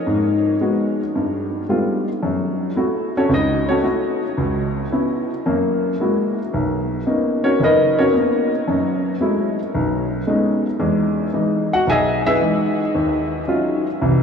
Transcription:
grand piano
0.07 G#2
0.61 G#3 B3 F#4
1.16 G2
1.69 G3 A3 B3 F4
2.23 F#2
2.76 A3 E4 F#4
3.17 C#4 F#4 A4 C#5
3.29 C#2 C#3
3.34 D#4 D#5
3.69 C#4 F#4 A4 C#5
3.84 A3 E4 F#4
4.38 C#2
4.91 B3 C#4 E4
5.46 F#2 A#3
6.00 G#3 A#3 E4 F#4
6.54 B1
7.06 A#3 B3 C#4 D#4
7.44 C#4 F#4 A#4 C#5
7.60 F#1 B4
7.64 D#4 A#4 D#5
7.98 C#4 F#4 A#4 C#5
8.14 A#3 B3 C#4 D#4
8.68 F#2
9.20 F#3 G#3 A3 E4
9.75 B1
10.27 G#3 A3 B3 C#4 D#4
10.79 E2 G#3
11.33 E3 G#3 D#4
11.73 F#4 F#5
11.87 B1 G#4 D#5 E5 G#5
12.27 E4 G#4 B4 E5
12.41 E3 G#3 D#4
12.95 D#2
13.48 F#3 C#4 D#4 F4
14.01 C2 E3

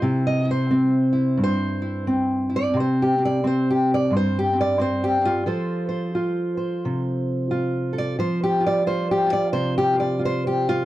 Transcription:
steel-string acoustic guitar
Already playing: C5
0.02 C3 E4
0.27 D#5
0.45 E4
0.51 C5
0.71 C4
1.13 E4
1.37 G2
1.44 C5
1.82 E4
2.07 C4
2.50 E4
2.56 D5
2.74 C3
2.80 C5
3.02 G4
3.18 C4
3.25 D5
3.44 C4 C5
3.71 G4
3.94 D5
4.10 G2
4.17 C5
4.39 G4
4.53 C4
4.61 D5
4.79 C4 C5
5.04 G4
5.22 C4 F4
5.46 F3 F4 A4 C5
5.89 C5
6.15 F4
6.57 C5
6.85 C3
7.51 F4
7.93 A4
7.98 D5
8.19 F3 C5
8.44 G4
8.60 F4
8.67 D5
8.87 F4 C5
9.11 G4
9.26 F4
9.33 D5
9.53 C3 C5
9.78 G4
9.93 F4
10.00 D5
10.19 F4
10.25 C5
10.47 G4
10.69 F4

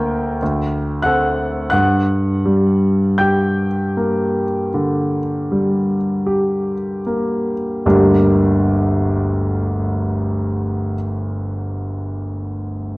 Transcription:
grand piano
Already playing: D2 A#3 A#4 G5 G6
0.43 D2
1.03 C4 A4 F#5 F#6
1.70 G2 F#5 F#6
2.46 G3
3.18 G4 G5 G6
3.97 A#3
4.74 D3
5.51 G3
6.26 G4
7.06 A#3
7.86 G1 D2 G3 A#3 D4 G4

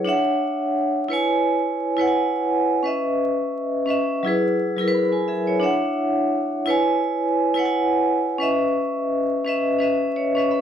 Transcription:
vibraphone
0.05 D4 C#5 E5
0.09 F#5
1.09 E4 B4 C#5
1.13 G#5
1.97 E4 B4 C#5
2.01 F#5
2.08 G#5
2.83 C#4 B4 D#5
2.87 E5
3.86 C#4 B4 D#5
3.90 E5
4.23 F#3 E4 G#4
4.27 B4
4.77 F#3 E4 G#4
4.81 A#4
4.88 B4
4.94 B5
5.12 B4 G#5
5.28 G#4 E5
5.47 E4 C#5
5.60 D4 C#5 E5
5.64 F#5
6.66 E4 B4 C#5
6.70 G#5
7.54 E4 B4 C#5
7.59 F#5
7.65 G#5
8.38 C#4 B4 D#5
8.43 E5
9.45 C#4 B4 D#5
9.49 E5
9.79 C#4 B4 D#5
9.83 E5
10.16 C#5
10.35 C#4 B4 D#5
10.40 E5
10.51 D#5 E5 B5

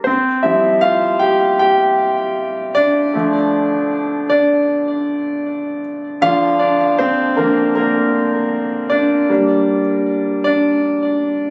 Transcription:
grand piano
0.04 C4 C5
0.43 F3 G3 C4 E4 E5
0.81 F4 F5
1.19 G4 G5
1.59 G4 G5
2.75 D4 D5
3.14 D3 F3 A3
4.30 D4 D5
6.21 D3 F3 D4 F4 F5
6.59 D4 D5
6.99 C4 C5
7.37 D3 F3 A#3 D4 A#4
7.75 A#3 A#4
8.90 D4 D5
9.30 G3 A#3 D4
10.44 D4 D5

